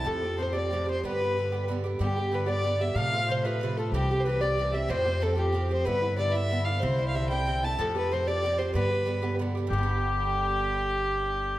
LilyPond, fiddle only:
\new Staff \with { instrumentName = "Fiddle" } { \time 6/8 \key g \mixolydian \tempo 4. = 124 a'4 c''8 d''4 c''8 | b'2 r4 | g'4 b'8 d''4 e''8 | f''4 c''8 b'4 a'8 |
g'8.~ g'32 c''32 b'8 d''4 e''8 | c''4 a'8 g'4 c''8 | b'4 d''8 e''4 f''8 | c''8.~ c''32 f''32 e''8 g''4 a''8 |
a'8 b'8 c''8 d''4 c''8 | b'2 r4 | g'2.~ | g'2. | }